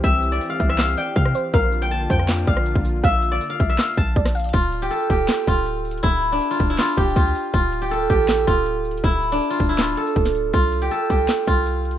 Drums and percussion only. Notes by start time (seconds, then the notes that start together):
0.04 kick, closed hi-hat
0.22 closed hi-hat
0.32 closed hi-hat
0.41 closed hi-hat
0.60 kick, closed hi-hat
0.69 cross-stick
0.79 snare, clap, closed hi-hat
0.97 closed hi-hat
1.16 kick, closed hi-hat
1.25 cross-stick
1.35 closed hi-hat
1.54 kick, closed hi-hat
1.72 closed hi-hat
1.82 closed hi-hat
1.91 closed hi-hat
2.10 kick, closed hi-hat
2.19 cross-stick
2.29 snare, clap, closed hi-hat
2.47 kick, closed hi-hat
2.57 cross-stick
2.66 closed hi-hat
2.75 kick
2.85 closed hi-hat
3.04 kick, closed hi-hat
3.22 closed hi-hat
3.41 closed hi-hat
3.60 kick, closed hi-hat
3.79 snare, clap, closed hi-hat
3.97 kick, closed hi-hat
4.16 kick, closed hi-hat
4.25 cross-stick, snare
4.35 closed hi-hat, open hi-hat
4.40 closed hi-hat
4.44 closed hi-hat
4.49 closed hi-hat
4.54 kick, closed hi-hat
4.72 closed hi-hat
4.91 closed hi-hat
5.10 kick, closed hi-hat
5.29 snare, clap, closed hi-hat
5.47 kick, closed hi-hat
5.66 closed hi-hat
5.85 closed hi-hat
5.91 closed hi-hat
5.97 closed hi-hat
6.04 kick, closed hi-hat
6.22 closed hi-hat
6.41 closed hi-hat
6.60 kick, open hi-hat
6.79 snare, clap, closed hi-hat
6.97 kick, closed hi-hat
7.04 closed hi-hat
7.10 closed hi-hat
7.16 kick, closed hi-hat
7.35 open hi-hat
7.54 kick, closed hi-hat
7.72 closed hi-hat
7.91 closed hi-hat
8.10 kick, closed hi-hat
8.29 snare, clap, closed hi-hat
8.47 kick, closed hi-hat
8.66 closed hi-hat
8.85 closed hi-hat
8.91 closed hi-hat
8.97 closed hi-hat
9.04 kick, closed hi-hat
9.22 closed hi-hat
9.41 closed hi-hat
9.60 kick, closed hi-hat, open hi-hat
9.69 closed hi-hat
9.79 snare, clap, closed hi-hat
9.97 closed hi-hat
10.07 closed hi-hat
10.16 kick, closed hi-hat
10.26 snare
10.35 closed hi-hat
10.54 kick, closed hi-hat
10.72 closed hi-hat
10.91 closed hi-hat
11.10 kick, closed hi-hat
11.29 snare, clap, closed hi-hat
11.47 kick, closed hi-hat
11.66 closed hi-hat
11.85 closed hi-hat
11.91 closed hi-hat